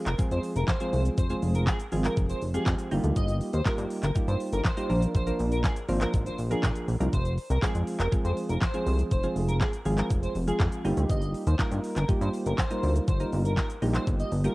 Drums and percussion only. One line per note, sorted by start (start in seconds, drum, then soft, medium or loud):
0.06 clap medium
0.06 closed hi-hat medium
0.06 shaker soft
0.06 shaker medium
0.18 kick loud
0.18 shaker medium
0.31 closed hi-hat medium
0.31 shaker medium
0.43 open hi-hat medium
0.43 shaker soft
0.43 shaker medium
0.56 closed hi-hat medium
0.56 shaker medium
0.68 kick loud
0.68 snare loud
0.68 clap loud
0.68 shaker medium
0.80 closed hi-hat medium
0.80 shaker medium
0.80 shaker soft
0.93 open hi-hat medium
0.93 shaker medium
0.93 shaker soft
1.05 closed hi-hat medium
1.05 shaker soft
1.05 shaker medium
1.18 kick loud
1.18 shaker medium
1.30 closed hi-hat soft
1.30 shaker soft
1.30 shaker medium
1.43 open hi-hat medium
1.43 shaker soft
1.55 closed hi-hat medium
1.55 shaker soft
1.55 shaker medium
1.67 kick loud
1.67 snare medium
1.67 clap loud
1.67 shaker medium
1.80 closed hi-hat medium
1.80 shaker soft
1.80 shaker medium
1.92 open hi-hat medium
1.92 shaker medium
2.04 clap medium
2.04 closed hi-hat medium
2.04 shaker medium
2.17 kick loud
2.17 shaker medium
2.29 closed hi-hat medium
2.29 shaker medium
2.29 shaker soft
2.42 open hi-hat medium
2.42 shaker soft
2.42 shaker medium
2.54 closed hi-hat medium
2.54 shaker medium
2.66 kick loud
2.66 snare medium
2.66 clap loud
2.66 shaker medium
2.79 closed hi-hat medium
2.79 shaker medium
2.79 shaker soft
2.91 open hi-hat medium
2.91 shaker soft
2.91 shaker medium
3.04 closed hi-hat medium
3.04 shaker medium
3.04 shaker soft
3.16 kick loud
3.16 shaker medium
3.28 closed hi-hat soft
3.28 shaker soft
3.28 shaker medium
3.41 open hi-hat medium
3.41 shaker soft
3.53 closed hi-hat medium
3.53 shaker soft
3.53 shaker medium
3.65 kick loud
3.65 snare medium
3.65 clap loud
3.65 shaker medium
3.78 closed hi-hat medium
3.78 shaker medium
3.90 open hi-hat medium
3.90 shaker medium
4.03 clap medium
4.03 closed hi-hat medium
4.03 shaker soft
4.03 shaker medium
4.15 kick loud
4.15 shaker medium
4.28 closed hi-hat soft
4.28 shaker soft
4.28 shaker medium
4.40 open hi-hat medium
4.40 shaker soft
4.40 shaker medium
4.53 closed hi-hat medium
4.53 shaker medium
4.64 kick loud
4.64 snare medium
4.64 clap loud
4.64 shaker medium
4.77 closed hi-hat medium
4.77 shaker medium
4.77 shaker soft
4.90 open hi-hat medium
4.90 shaker soft
4.90 shaker medium
5.02 closed hi-hat medium
5.02 shaker medium
5.02 shaker soft
5.15 kick loud
5.15 shaker medium
5.27 closed hi-hat soft
5.27 shaker soft
5.27 shaker medium
5.39 open hi-hat medium
5.39 shaker soft
5.52 closed hi-hat medium
5.52 shaker medium
5.64 kick loud
5.64 snare medium
5.64 clap loud
5.64 shaker medium
5.76 closed hi-hat medium
5.76 shaker medium
5.89 open hi-hat medium
5.89 shaker medium
6.01 clap medium
6.01 closed hi-hat medium
6.01 shaker medium
6.01 shaker soft
6.14 kick loud
6.14 shaker medium
6.26 closed hi-hat medium
6.26 shaker medium
6.26 shaker soft
6.38 open hi-hat medium
6.38 shaker soft
6.38 shaker medium
6.51 closed hi-hat medium
6.51 shaker medium
6.63 kick loud
6.63 snare loud
6.63 clap loud
6.63 shaker medium
6.75 closed hi-hat medium
6.75 shaker medium
6.75 shaker soft
6.88 open hi-hat medium
6.88 shaker soft
6.88 shaker medium
7.01 closed hi-hat medium
7.01 shaker soft
7.01 shaker medium
7.13 kick loud
7.13 shaker medium
7.25 closed hi-hat soft
7.25 shaker soft
7.25 shaker medium
7.38 open hi-hat medium
7.38 shaker medium
7.50 closed hi-hat medium
7.50 shaker soft
7.50 shaker medium
7.62 kick loud
7.62 snare medium
7.62 clap loud
7.62 shaker medium
7.75 closed hi-hat medium
7.75 shaker medium
7.87 open hi-hat medium
7.87 shaker medium
8.00 clap medium
8.00 closed hi-hat medium
8.00 shaker medium
8.00 shaker soft
8.12 kick loud
8.12 shaker medium
8.25 closed hi-hat medium
8.25 shaker soft
8.25 shaker medium
8.37 open hi-hat medium
8.37 shaker soft
8.37 shaker medium
8.49 closed hi-hat medium
8.49 shaker medium
8.61 kick loud
8.61 snare medium
8.61 clap loud
8.61 shaker medium
8.74 closed hi-hat medium
8.74 shaker medium
8.74 shaker soft
8.86 open hi-hat medium
8.86 shaker medium
8.86 shaker soft
8.99 closed hi-hat medium
8.99 shaker soft
8.99 shaker medium
9.11 kick loud
9.11 shaker medium
9.23 closed hi-hat soft
9.23 shaker soft
9.23 shaker medium
9.36 open hi-hat medium
9.36 shaker medium
9.48 closed hi-hat medium
9.48 shaker soft
9.48 shaker medium
9.61 kick loud
9.61 snare medium
9.61 clap loud
9.61 shaker medium
9.73 closed hi-hat medium
9.73 shaker soft
9.73 shaker medium
9.86 open hi-hat medium
9.86 shaker medium
9.98 clap medium
9.98 closed hi-hat medium
9.98 shaker medium
10.10 kick loud
10.10 shaker medium
10.23 closed hi-hat medium
10.23 shaker soft
10.23 shaker medium
10.35 open hi-hat medium
10.35 shaker soft
10.35 shaker medium
10.48 closed hi-hat medium
10.48 shaker medium
10.60 kick loud
10.60 snare medium
10.60 clap loud
10.60 shaker medium
10.72 closed hi-hat medium
10.72 shaker medium
10.85 open hi-hat medium
10.85 shaker soft
10.85 shaker medium
10.97 closed hi-hat medium
10.97 shaker medium
10.97 shaker soft
11.10 kick loud
11.10 shaker medium
11.22 closed hi-hat soft
11.22 shaker soft
11.22 shaker medium
11.34 open hi-hat medium
11.34 shaker soft
11.47 closed hi-hat medium
11.47 shaker medium
11.59 kick loud
11.59 snare medium
11.59 clap loud
11.59 shaker medium
11.71 closed hi-hat medium
11.71 shaker medium
11.84 open hi-hat medium
11.84 shaker medium
11.96 clap medium
11.96 closed hi-hat medium
11.96 shaker soft
11.96 shaker medium
12.09 kick loud
12.09 shaker medium
12.21 closed hi-hat soft
12.21 shaker medium
12.34 open hi-hat medium
12.34 shaker soft
12.34 shaker medium
12.46 closed hi-hat medium
12.46 shaker medium
12.58 kick loud
12.58 snare medium
12.58 clap loud
12.58 shaker medium
12.71 closed hi-hat medium
12.71 shaker medium
12.71 shaker soft
12.83 open hi-hat medium
12.83 shaker medium
12.83 shaker soft
12.95 closed hi-hat medium
12.95 shaker soft
12.95 shaker medium
13.08 kick loud
13.08 shaker medium
13.20 closed hi-hat soft
13.20 shaker soft
13.20 shaker medium
13.33 open hi-hat medium
13.33 shaker soft
13.33 shaker medium
13.45 closed hi-hat medium
13.45 shaker soft
13.45 shaker medium
13.57 kick loud
13.57 snare medium
13.57 clap loud
13.57 shaker medium
13.70 closed hi-hat medium
13.70 shaker medium
13.82 open hi-hat medium
13.82 shaker medium
13.82 shaker soft
13.95 clap medium
13.95 closed hi-hat medium
13.95 shaker soft
13.95 shaker medium
14.07 kick loud
14.07 shaker medium
14.20 closed hi-hat medium
14.20 shaker soft
14.20 shaker medium
14.32 open hi-hat medium
14.32 shaker soft
14.32 shaker medium
14.44 closed hi-hat medium
14.44 shaker medium